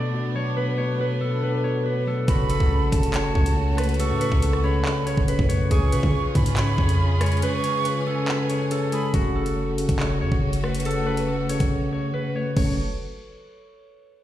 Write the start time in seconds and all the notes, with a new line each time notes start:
Already playing: B2 A3 B3 D4 F#4 A4 B4 D5
0.14 B2
0.35 F#3 C#5
0.57 B2 B4
0.78 B2 C#5
1.00 B2 B4
1.21 B2 A4
1.42 B2 B4
1.64 B2 C#5
1.85 B2 B4
2.07 F#3 A4
2.28 F#1 C#3 A3 C#4 F#4 B5, kick, closed hi-hat
2.49 C#3 A4, closed hi-hat
2.60 C#2, kick
2.71 C#3
2.82 A1
2.92 F#1 C#3 A5, kick, closed hi-hat
3.03 closed hi-hat
3.14 C#3 C#5, clap, closed hi-hat
3.35 C#2 C#3 C#5, kick
3.46 closed hi-hat
3.57 C#3
3.77 A3 B4, cross-stick, closed hi-hat
3.84 closed hi-hat
3.89 closed hi-hat
3.94 closed hi-hat
3.99 C#3 A4 C#6, closed hi-hat
4.10 A2
4.21 C#3 B4, closed hi-hat
4.32 C#2, kick
4.42 C#3 A4, closed hi-hat
4.53 cross-stick
4.63 C#3 C#5 B5
4.85 C#3, clap
5.06 C#3 C#5, closed hi-hat
5.17 F#1, kick
5.28 C#3 B4, closed hi-hat
5.39 F#2, kick
5.49 A3 C#5, closed hi-hat
5.71 C#2 C#3 C#4 F4 G#4 C#6, kick, closed hi-hat
5.92 C#3 B4, closed hi-hat
6.03 C#3, kick
6.14 C#3
6.35 G#2 C#3 B5, kick, closed hi-hat
6.46 closed hi-hat
6.57 C#3 C#5, clap, closed hi-hat
6.78 F2 C#3 C#5, kick
6.89 closed hi-hat
7.00 C#3
7.21 G#3 C#5, cross-stick, closed hi-hat
7.26 closed hi-hat
7.32 closed hi-hat
7.37 closed hi-hat
7.42 C#3 B4 C#6, closed hi-hat
7.64 C#3 C#5, closed hi-hat
7.85 C#3 B4, closed hi-hat
8.07 C#3 A4 G#5
8.28 C#3 B4, clap
8.49 C#3 C#5, closed hi-hat
8.71 C#3 A4, closed hi-hat
8.92 G#3 G#4 B5, closed hi-hat
9.14 F#1 C#3 A3 C#4 F#4, kick, closed hi-hat
9.35 C#3 A4
9.46 closed hi-hat
9.57 C#3
9.78 C#3, closed hi-hat
9.89 F#1, kick, closed hi-hat
10.00 C#3 C#5, clap
10.21 F#2 C#3 C#5
10.32 F#1, kick
10.43 C#3
10.53 closed hi-hat
10.64 A3 B4, cross-stick
10.75 closed hi-hat
10.80 closed hi-hat
10.85 C#3 A4, closed hi-hat
10.91 closed hi-hat
11.06 C#3 B4
11.17 closed hi-hat
11.28 C#3 A4
11.49 C#3 C#5, closed hi-hat
11.60 F#1, kick, closed hi-hat
11.71 C#3
11.92 C#3 C#5
12.14 C#3 B4
12.35 A3 C#5
12.56 F#1 C#3 F#3 A3 C#4 F#4 A4 C#5, kick, crash